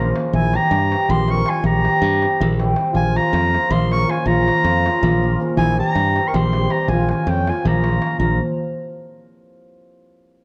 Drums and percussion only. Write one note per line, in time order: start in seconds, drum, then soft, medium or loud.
0.07 darbuka tek soft
0.16 darbuka tek medium
0.25 darbuka tek soft
0.34 darbuka dum loud
0.54 darbuka tek medium
0.63 darbuka tek soft
0.72 darbuka tek medium
0.92 darbuka tek medium
1.01 darbuka tek soft
1.09 darbuka dum medium
1.19 darbuka tek soft
1.28 darbuka tek medium
1.38 darbuka tek soft
1.46 darbuka tek medium
1.55 darbuka tek soft
1.64 darbuka dum medium
1.75 darbuka tek soft
1.85 darbuka tek medium
1.93 darbuka tek soft
2.02 darbuka tek medium
2.12 darbuka tek soft
2.22 darbuka tek medium
2.40 darbuka dum medium
2.50 darbuka tek soft
2.60 darbuka tek medium
2.68 darbuka tek soft
2.76 darbuka tek medium
2.86 darbuka tek soft
2.94 darbuka dum medium
3.16 darbuka tek medium
3.25 darbuka tek soft
3.34 darbuka tek medium
3.54 darbuka tek medium
3.64 darbuka tek soft
3.71 darbuka dum loud
3.82 darbuka tek soft
3.92 darbuka tek medium
4.00 darbuka tek soft
4.09 darbuka tek medium
4.18 darbuka tek soft
4.27 darbuka dum loud
4.48 darbuka tek medium
4.57 darbuka tek soft
4.65 darbuka tek medium
4.86 darbuka tek medium
4.95 darbuka tek soft
5.03 darbuka dum loud
5.13 darbuka tek soft
5.31 darbuka tek soft
5.49 darbuka tek soft
5.57 darbuka dum loud
5.87 darbuka tek soft
5.95 darbuka tek medium
6.16 darbuka tek medium
6.25 darbuka tek soft
6.34 darbuka dum loud
6.44 darbuka tek soft
6.53 darbuka tek medium
6.63 darbuka tek soft
6.70 darbuka tek medium
6.80 darbuka tek soft
6.88 darbuka dum loud
6.99 darbuka tek soft
7.09 darbuka tek medium
7.18 darbuka tek soft
7.27 darbuka tek medium
7.38 darbuka tek soft
7.47 darbuka tek medium
7.57 darbuka tek soft
7.65 darbuka dum loud
7.75 darbuka tek soft
7.84 darbuka tek medium
7.93 darbuka tek soft
8.02 darbuka tek medium
8.11 darbuka tek soft
8.19 darbuka dum medium